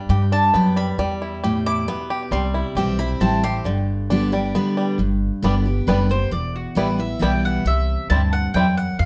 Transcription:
Already playing: G3 D4 B5
0.09 G2 G4
0.32 D4 A5
0.54 F#2 B3 G5
0.76 G3 B5
0.98 E2 G3
1.22 E4
1.44 A2 G4
1.66 E4 D6
1.88 B2 B3
2.10 G4
2.31 C2 C3 G3 C6
2.54 E4
2.75 B1 E3 G3 C4 E4 G4
2.99 C4 E4 B5
3.20 A1 E3 G3 C4 E4 A5
3.43 C4 E4 G4 C6
3.64 G1 G2 D3
4.10 D3 G3 B3 D4 G4
4.32 G3 B3 G4
4.55 D3 G3 B3 G4
4.77 G3
4.98 G1 G2
5.43 G1 D3 G3 B3 D4 G4
5.65 B3 G4
5.87 F#1 D3 G3 B3 D4 G4 B4
6.09 B3 G4 C5
6.31 E1 E2 D5
6.56 F#4
6.75 A1 E3 G3 B3 E4 B4
6.99 B3 E4 E5
7.19 B1 E3 G3 B3 E4 G5
7.45 F#5
7.65 C2 C3 E5
8.10 D2 G2 G3 C4 E4 A5
8.33 F#5
8.54 E2 F#2 G3 C4 E4 G5
8.77 F#5
8.99 F2 F5

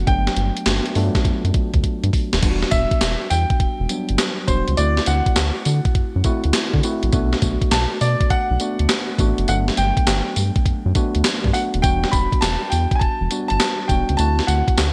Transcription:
Already playing: F#5
0.07 G1 F#3 A3 B3 D4 G5, kick, closed hi-hat
0.27 snare, closed hi-hat
0.36 G1, closed hi-hat
0.57 closed hi-hat
0.66 G1 A3 B3 D4 F#4, snare, clap, closed hi-hat
0.86 closed hi-hat
0.95 G2 A3 B3 D4 F4, open hi-hat
1.03 F#3
1.15 kick, snare, closed hi-hat
1.25 F#2, kick, closed hi-hat
1.44 F#2, closed hi-hat
1.54 kick, closed hi-hat
1.74 D2, kick, closed hi-hat
1.84 kick, closed hi-hat
2.03 G2, closed hi-hat
2.13 kick, open hi-hat
2.33 D#1, snare, closed hi-hat
2.42 E1 G3 B3 D4 F4, kick, closed hi-hat, crash, tambourine
2.50 F#4
2.62 snare
2.71 E1 E5, kick, closed hi-hat, tambourine
2.91 kick, closed hi-hat
3.01 E1, snare, clap, closed hi-hat, tambourine
3.30 E2 G5, open hi-hat, tambourine
3.50 kick, closed hi-hat
3.60 E1, kick, closed hi-hat
3.80 E1
3.89 F#3 G3 B3 D4, closed hi-hat, tambourine
4.09 G1, closed hi-hat
4.18 snare, clap, closed hi-hat, tambourine
4.47 E1 G3 B3 D4 F#4 C5, kick, closed hi-hat, tambourine
4.68 C#2, closed hi-hat
4.77 D2 A3 C4 E4 F#4 D5, closed hi-hat, tambourine
4.97 snare
5.06 D2 F#5, closed hi-hat, tambourine
5.26 kick, closed hi-hat
5.36 D2, snare, clap, closed hi-hat, tambourine
5.65 D3, open hi-hat, tambourine
5.85 kick, closed hi-hat
5.95 F#2, kick, closed hi-hat
6.16 F#2
6.24 A3 C4 E4 F#4, kick, closed hi-hat, tambourine
6.44 D2, closed hi-hat
6.53 snare, clap, closed hi-hat, tambourine
6.74 D3, kick
6.83 A3 C4 E4 F#4, closed hi-hat, tambourine
7.03 A#1, closed hi-hat
7.13 B1 A3 B3 D4 F#4, kick, closed hi-hat, tambourine
7.33 snare
7.42 B1, kick, closed hi-hat, tambourine
7.62 kick, closed hi-hat
7.71 B1 A5, snare, clap, closed hi-hat, tambourine
8.01 B2 D5, open hi-hat, tambourine
8.21 kick, closed hi-hat
8.30 B1 F#5, kick, closed hi-hat
8.51 B1
8.60 A3 B3 D4 F#4, closed hi-hat, tambourine
8.79 D2, closed hi-hat
8.89 snare, clap, closed hi-hat, tambourine
9.18 A1 A3 B3 D4 F#4, kick, closed hi-hat, tambourine
9.38 F#1, closed hi-hat
9.48 G1 F#3 A3 B3 D4 F#5, closed hi-hat, tambourine
9.68 snare
9.77 G1 G5, closed hi-hat, tambourine
9.97 kick, closed hi-hat
10.07 G1, snare, clap, closed hi-hat, tambourine
10.36 G2, open hi-hat, tambourine
10.56 kick, closed hi-hat
10.66 F#2, kick, closed hi-hat
10.86 F#2
10.95 A3 B3 D4 F#4, kick, closed hi-hat, tambourine
11.15 D2, closed hi-hat
11.24 snare, clap, closed hi-hat, tambourine
11.44 G2, kick
11.53 A3 B3 D4 F#4 F#5, open hi-hat, tambourine
11.74 D#1, closed hi-hat
11.82 E1 G3 B3 D4 F#4 G5, kick, closed hi-hat, tambourine
12.04 snare
12.12 E1 B5, kick, closed hi-hat, tambourine
12.32 kick, closed hi-hat
12.41 E1 A5, snare, clap, closed hi-hat, tambourine
12.70 E2 G5, open hi-hat, tambourine
12.91 kick, closed hi-hat
12.95 G#5 A5
13.01 E1, kick, closed hi-hat
13.21 E1
13.31 G3 B3 D4 F#4, closed hi-hat, tambourine
13.48 G1 A5, closed hi-hat
13.60 snare, clap, closed hi-hat, tambourine
13.88 E1 G3 B3 D4 F#4 G5, kick, closed hi-hat, tambourine
14.09 C#2, closed hi-hat
14.17 D2 A3 C4 E4 F#4 A5, closed hi-hat, tambourine
14.39 snare
14.47 D2 F#5, closed hi-hat, tambourine
14.68 kick, closed hi-hat
14.78 D2, snare, clap, closed hi-hat, tambourine

